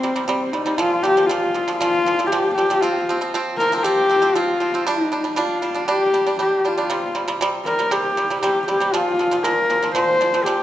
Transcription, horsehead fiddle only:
Already playing: C4
0.27 C4
0.52 D#4
0.77 F4
1.03 G4
1.22 G4
1.26 F4
1.76 F4
2.27 G4
2.55 G4
2.81 F4
3.58 A#4
3.77 A#4
3.83 G4
4.36 F4
4.87 D#4
5.38 F4
5.89 G4
6.40 G4
6.68 F4
7.65 A#4
7.92 G4
8.42 G4
8.68 G4
8.93 F4
9.43 A#4
9.95 C5
10.44 G4

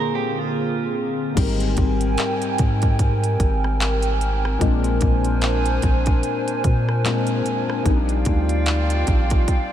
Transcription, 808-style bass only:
1.37 G#1
1.78 G#1
2.59 G#2
3.40 G#1
4.61 A#1
5.02 A#1
5.83 A#1
6.64 A#2
7.86 A#1
8.26 D2
9.08 A#1

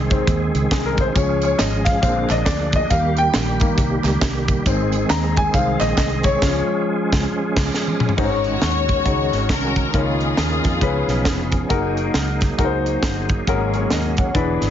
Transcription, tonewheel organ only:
Already playing: D#3 G#3 C4 G#4
1.12 F3 G#3 C#4
2.02 A#3 D4
2.91 D#3 G3 G4
4.67 G#3 C4 G#4
6.43 F3 C#4
8.16 D#3 G#3 C#4 F#4
9.93 A#3 F4
10.81 F3 B3 C#4 G#4
11.70 F#3 A#3 D#4
13.45 C#4
14.34 D3 E3 B3 G#4

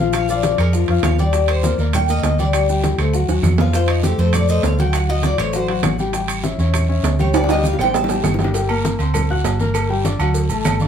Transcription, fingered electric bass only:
Already playing: A#1
0.58 F2
0.88 F2
1.03 D#2
1.78 D#2
2.23 D2
2.98 D2
3.28 D#2
3.43 F2
4.18 F2
4.63 D2
5.38 A1
5.83 A1
6.58 E2
7.03 D2
7.79 A1
8.24 G1
8.99 D2
9.44 G1
10.19 D2
10.49 A1
10.64 G1

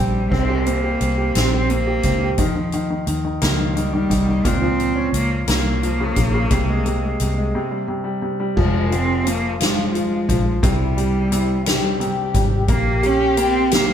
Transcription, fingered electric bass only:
Already playing: A#1
0.32 C2
1.01 C2
1.35 A#1
2.04 C#2
2.38 D#2
3.07 D#2
3.42 C#2
4.10 C2
4.45 C#2
5.13 C#2
5.48 C2
6.17 A#1
6.51 C2
7.20 C2
8.57 F1
10.29 A#1
10.63 C2
12.35 G#1
12.69 A#1

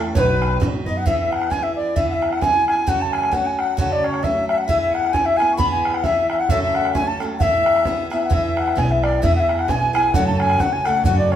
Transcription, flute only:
0.14 C#5
0.19 B4
0.88 D#5
0.97 F#5
1.06 E5
1.19 E5
1.31 F#5
1.51 G#5
1.63 E5
1.75 D5
1.95 E5
2.10 E5 F#5
2.32 F#5
2.42 G#5
2.68 G#5
2.88 F#5
3.02 A5
3.14 G#5
3.33 F#5
3.46 G#5
3.59 F#5
3.79 F#5
3.92 D5
4.04 C#5
4.24 E5
4.49 E5
4.57 F#5
4.68 E5
4.81 E5
4.94 F#5
5.13 G#5
5.25 E5
5.37 G#5
5.57 B5
5.71 G#5
5.94 F#5
6.04 E5
6.30 E5
6.40 F#5
6.50 E5
6.63 E5
6.75 F#5
6.95 G#5
7.07 A5
7.39 E5 F#5
8.13 E5
8.24 F#5
8.33 E5
8.46 E5
8.60 F#5
8.78 G#5
8.91 E5
9.03 D5
9.23 E5
9.35 F#5
9.40 E5
9.59 F#5
9.70 G#5
9.95 G#5
10.14 F#5
10.27 A5
10.40 G#5
10.60 F#5
10.73 G#5
10.85 F#5
11.05 F#5
11.18 D5
11.32 C#5

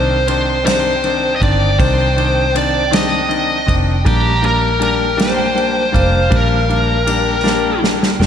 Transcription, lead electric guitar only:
Already playing: C5
0.28 C5
0.66 C5
1.36 D#5
1.43 D5
1.80 C5
2.57 D5
2.94 D#5
4.07 G4
4.46 A#4
4.83 A#4
5.21 C5
6.36 A#4

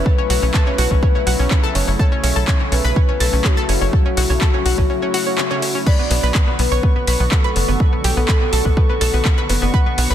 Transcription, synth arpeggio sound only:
0.18 C#4
0.30 F#4
0.43 C#4
0.54 A4
0.67 C#4
0.78 F#4
0.91 C#4
1.03 C#4
1.15 C#4
1.27 F#4
1.39 C#4
1.51 C#4
1.64 A4
1.75 C#4
1.88 C#4
1.99 A4
2.12 C#4
2.24 C#4
2.36 A4
2.48 C#4
2.60 C#4
2.72 C#4
2.85 B4
2.96 C#4
3.09 C#4
3.20 A4
3.33 C#4
3.45 C#4
3.57 A4
3.69 C#4
3.81 C#4
4.06 C#4
4.17 F#4
4.30 C#4
4.41 A4
4.54 C#4
4.66 F#4
4.78 C#4
4.90 C#4
5.02 C#4
5.14 F#4
5.27 C#4
5.38 C#4
5.51 C#4
5.62 C#4
5.75 C#4
5.87 B4
5.99 B3
6.11 B3
6.23 B4
6.35 B3
6.48 B3
6.59 B3
6.72 C#5
6.83 B3
6.96 B3
7.08 B4
7.20 B3
7.32 B3
7.44 B4
7.56 B3
7.68 B3
7.93 B3
8.04 G4
8.17 B3
8.29 B4
8.41 B3
8.53 A4
8.65 B3
8.77 B3
8.90 B3
9.01 A4
9.14 B3
9.25 B3
9.38 B4
9.50 B3
9.62 B3
9.74 B4
9.86 B3
9.98 B3
10.11 B4

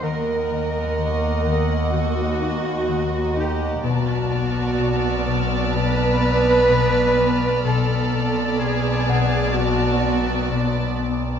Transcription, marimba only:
0.04 D#3
0.51 D#3
0.99 D#3
1.46 D#3
1.94 D#3
2.41 D#4
2.89 D#3
3.37 D#4
3.84 B2
4.32 B2
4.80 B2
5.27 B2
5.75 B2
6.23 B3
6.70 B2
7.18 B3
7.65 B2
8.13 B2
8.60 B2
9.08 B2
9.55 B2
10.04 B3
10.51 B2
10.99 B3

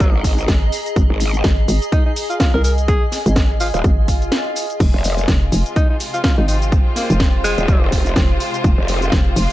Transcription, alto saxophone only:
Already playing: G#3
1.92 D#4
2.06 D#4
2.30 F4
2.40 F4
2.54 A#4
2.64 A#4
2.88 G#4
3.60 F4
3.74 F4
5.76 D#4
5.90 D#4
6.14 F4
6.24 F4
6.38 D#4
6.48 D#4
6.96 A#3
7.44 G#3

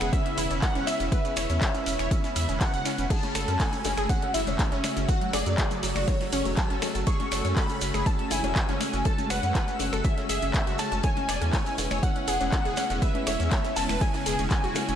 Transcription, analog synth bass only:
0.01 E1
0.38 E1
0.51 E1
0.75 E1
1.00 E1
1.37 E1
1.50 E2
1.86 E1
1.99 E1
2.36 E2
2.49 E1
2.74 E1
2.98 E1
3.35 F#1
3.48 F#2
3.85 F#1
3.98 F#1
4.34 F#1
4.47 E1
4.72 F#1
4.97 F#1
5.33 F#1
5.46 F#2
5.83 F#1
5.96 F#1
6.33 F#1
6.46 E1
6.70 F#1
6.95 F#1
7.32 F#1
7.45 F#2
7.81 F#1
7.94 F#1
8.31 F#1
8.44 E1
8.69 F#1
8.94 F#1
9.30 F#1
9.43 F#2
9.80 F#1
9.93 F#1
10.29 F#1
10.42 F#1
10.67 F#1
10.92 F#1
11.29 E1
11.42 E2
11.78 E1
11.91 E1
12.28 E1
12.41 E1
12.65 E1
12.90 E1
13.27 E1
13.40 E2
13.77 E1
13.89 E1
14.26 E1
14.39 E1
14.64 E1
14.89 E1

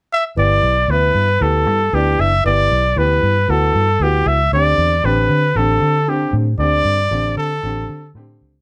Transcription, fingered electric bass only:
0.37 G1
0.63 B1
0.88 D2
1.15 G2
1.41 D2
1.67 G2
1.93 D2
2.19 F#1
2.45 G1
2.71 B1
2.97 D2
3.23 G2
3.49 D2
3.75 G2
4.00 D2
4.26 C#2
4.52 D2
4.78 E2
5.04 A1
5.29 D3
5.55 A1
5.82 D3
6.33 A2
6.58 D2
6.85 G2
7.11 A1
7.37 D3
7.63 A1
7.89 D3
8.15 A2
8.41 C#2

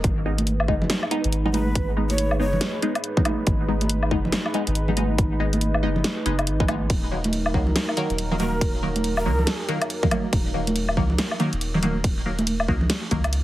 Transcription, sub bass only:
0.04 G#1
0.68 F#1
1.24 G#1
2.40 F#1
3.47 G#1
4.11 F#1
4.67 G#1
5.83 F#1
6.26 F#1
6.47 G#1
6.90 D#1
7.54 C#2
8.10 D#1
9.26 C#2
10.33 D#1
10.97 C#2
11.53 D#1
12.68 C#2
13.11 C#2

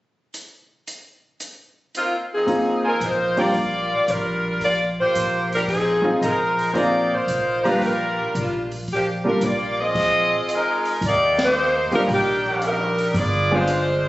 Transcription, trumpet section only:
2.83 F4 A#4 C5 G#5
3.36 F4 A#4 D5 G5
6.21 G#4 C5 D#5 A#5
6.73 G#4 C5 F5 A#5
7.63 G4 D5 F5 A#5
12.06 D4 A#4 D5 G5

